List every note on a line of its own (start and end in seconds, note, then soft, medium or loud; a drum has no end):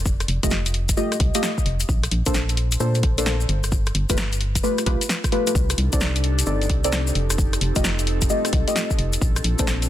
0.00 0.25 F1 medium
0.05 kick loud
0.05 maracas medium
0.20 cross-stick soft
0.20 closed hi-hat soft
0.20 maracas soft
0.28 0.39 F1 loud
0.28 open hi-hat loud
0.43 0.94 F1 medium
0.43 0.51 A3 medium
0.43 0.51 F4 medium
0.43 0.51 G4 medium
0.43 0.51 D#5 medium
0.43 kick loud
0.43 closed hi-hat medium
0.43 maracas medium
0.50 snare loud
0.50 maracas medium
0.66 closed hi-hat medium
0.66 maracas soft
0.74 open hi-hat medium
0.89 kick medium
0.89 closed hi-hat medium
0.89 maracas medium
0.97 1.16 A3 medium
0.97 1.16 F4 medium
0.97 1.16 G4 medium
0.97 1.16 D#5 medium
0.97 maracas medium
1.12 cross-stick soft
1.12 closed hi-hat soft
1.12 maracas soft
1.20 1.31 C2 medium
1.20 kick loud
1.20 open hi-hat loud
1.34 1.51 A3 loud
1.34 1.51 F4 medium
1.34 1.51 G4 medium
1.34 1.51 D#5 loud
1.34 closed hi-hat medium
1.34 maracas medium
1.43 snare loud
1.43 maracas medium
1.58 kick medium
1.58 maracas soft
1.66 1.85 F1 loud
1.66 open hi-hat medium
1.80 closed hi-hat medium
1.80 maracas medium
1.89 2.07 A#1 loud
1.89 kick loud
1.89 maracas medium
2.03 cross-stick soft
2.03 closed hi-hat soft
2.03 maracas soft
2.11 2.23 A#1 loud
2.11 open hi-hat loud
2.26 2.77 A#1 medium
2.26 2.34 A#3 medium
2.26 2.34 D4 medium
2.26 2.34 A4 medium
2.26 2.34 C5 medium
2.26 kick loud
2.26 closed hi-hat medium
2.26 maracas medium
2.34 snare loud
2.34 maracas medium
2.49 closed hi-hat medium
2.49 maracas soft
2.57 open hi-hat medium
2.72 closed hi-hat medium
2.72 maracas medium
2.80 3.05 A#2 medium
2.80 2.99 A#3 medium
2.80 2.99 D4 medium
2.80 2.99 A4 medium
2.80 2.99 C5 medium
2.80 maracas medium
2.95 closed hi-hat soft
2.95 maracas soft
3.03 3.46 A#1 medium
3.03 kick loud
3.03 open hi-hat loud
3.18 3.34 A#3 loud
3.18 3.34 D4 medium
3.18 3.34 A4 medium
3.18 3.34 C5 loud
3.18 closed hi-hat medium
3.18 maracas medium
3.26 snare loud
3.26 maracas medium
3.40 maracas soft
3.49 3.91 G1 medium
3.49 open hi-hat medium
3.64 cross-stick medium
3.64 closed hi-hat medium
3.64 maracas medium
3.72 kick loud
3.72 maracas medium
3.86 cross-stick medium
3.86 closed hi-hat soft
3.86 maracas soft
3.95 4.06 G1 medium
3.95 open hi-hat loud
4.09 4.60 G1 medium
4.09 4.17 A3 medium
4.09 4.17 F4 medium
4.09 4.17 G4 medium
4.09 4.17 B4 loud
4.09 kick loud
4.09 closed hi-hat medium
4.09 maracas medium
4.17 snare loud
4.17 maracas medium
4.32 closed hi-hat soft
4.32 maracas soft
4.41 open hi-hat medium
4.55 kick medium
4.55 closed hi-hat medium
4.55 maracas medium
4.63 4.82 A3 medium
4.63 4.82 F4 medium
4.63 4.82 G4 medium
4.63 4.82 B4 medium
4.63 maracas medium
4.78 cross-stick medium
4.78 closed hi-hat soft
4.78 maracas soft
4.86 4.97 B1 medium
4.86 5.00 A3 loud
4.86 5.00 F4 medium
4.86 5.00 G4 medium
4.86 5.00 B4 loud
4.86 kick loud
4.86 open hi-hat loud
5.01 closed hi-hat medium
5.01 maracas medium
5.09 snare loud
5.09 maracas medium
5.24 kick medium
5.24 cross-stick medium
5.24 closed hi-hat soft
5.24 maracas soft
5.32 5.45 A3 loud
5.32 5.45 F4 medium
5.32 5.45 G4 medium
5.32 5.45 B4 loud
5.32 open hi-hat medium
5.47 5.54 A3 medium
5.47 5.54 F4 medium
5.47 5.54 G4 medium
5.47 5.54 B4 medium
5.47 closed hi-hat medium
5.47 maracas medium
5.55 5.74 C2 loud
5.55 7.14 D4 medium
5.55 9.18 D#4 medium
5.55 9.18 G4 medium
5.55 7.14 A4 medium
5.55 kick loud
5.55 maracas medium
5.70 cross-stick medium
5.70 closed hi-hat soft
5.70 maracas soft
5.78 5.89 C2 medium
5.78 open hi-hat loud
5.93 6.43 C2 medium
5.93 6.00 C4 medium
5.93 6.00 D#4 medium
5.93 6.00 A4 medium
5.93 6.00 D5 loud
5.93 kick loud
5.93 closed hi-hat medium
5.93 maracas medium
6.00 snare loud
6.00 maracas medium
6.16 closed hi-hat soft
6.16 maracas soft
6.24 open hi-hat medium
6.39 closed hi-hat medium
6.39 maracas medium
6.46 6.71 G1 medium
6.46 6.66 C4 medium
6.46 6.66 D#4 medium
6.46 6.66 A4 medium
6.46 6.66 D5 medium
6.46 maracas medium
6.62 closed hi-hat soft
6.62 maracas soft
6.70 7.12 C2 medium
6.70 kick loud
6.70 open hi-hat loud
6.84 7.00 C4 loud
6.84 7.00 D#4 medium
6.84 7.00 A4 medium
6.84 7.00 D5 loud
6.84 closed hi-hat medium
6.84 maracas medium
6.92 snare loud
6.92 maracas medium
7.07 maracas soft
7.15 7.58 F1 medium
7.15 9.19 C4 medium
7.15 9.89 A4 medium
7.15 open hi-hat medium
7.30 cross-stick medium
7.30 closed hi-hat medium
7.30 maracas medium
7.38 kick loud
7.38 maracas medium
7.53 cross-stick medium
7.53 closed hi-hat soft
7.53 maracas soft
7.61 7.72 F1 loud
7.61 open hi-hat loud
7.76 8.27 F1 medium
7.76 7.84 A3 medium
7.76 7.84 F4 medium
7.76 7.84 G4 medium
7.76 7.84 D#5 medium
7.76 kick loud
7.76 closed hi-hat medium
7.76 maracas medium
7.84 snare loud
7.84 maracas medium
7.99 closed hi-hat soft
7.99 maracas soft
8.07 open hi-hat medium
8.21 kick medium
8.21 closed hi-hat medium
8.21 maracas medium
8.30 8.49 A3 medium
8.30 8.49 F4 medium
8.30 8.49 G4 medium
8.30 8.49 D#5 medium
8.30 maracas medium
8.45 cross-stick medium
8.45 closed hi-hat soft
8.45 maracas soft
8.53 8.64 C2 medium
8.53 kick loud
8.53 open hi-hat loud
8.68 8.83 A3 loud
8.68 8.83 F4 medium
8.68 8.83 G4 medium
8.68 8.83 D#5 loud
8.68 closed hi-hat medium
8.68 maracas medium
8.76 snare loud
8.76 maracas medium
8.90 kick medium
8.90 maracas soft
8.99 9.17 F1 loud
8.99 open hi-hat medium
9.13 closed hi-hat medium
9.13 maracas medium
9.21 9.40 A#1 loud
9.21 9.89 C4 medium
9.21 9.89 D4 medium
9.21 9.89 F4 medium
9.21 kick loud
9.21 maracas medium
9.36 cross-stick medium
9.36 closed hi-hat soft
9.36 maracas soft
9.44 9.55 A#1 loud
9.44 open hi-hat loud
9.59 9.89 A#1 medium
9.59 9.67 A#3 medium
9.59 9.67 D4 medium
9.59 9.67 A4 medium
9.59 9.67 C5 medium
9.59 kick loud
9.59 closed hi-hat medium
9.59 maracas medium
9.67 snare loud
9.67 maracas medium
9.82 closed hi-hat soft
9.82 maracas soft